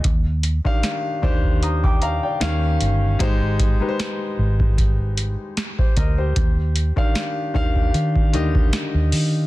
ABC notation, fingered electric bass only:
X:1
M:4/4
L:1/16
Q:"Swing 16ths" 1/4=76
K:Eb
V:1 name="Fingered electric bass" clef=bass
E,,3 z3 E,,4- E,, z E,,2 G,,,2 | A,,,3 z3 A,,,4- A,,, z3 D,,2 | E,,3 z3 E,,2 E,2 E,,2 z E,, E,2 |]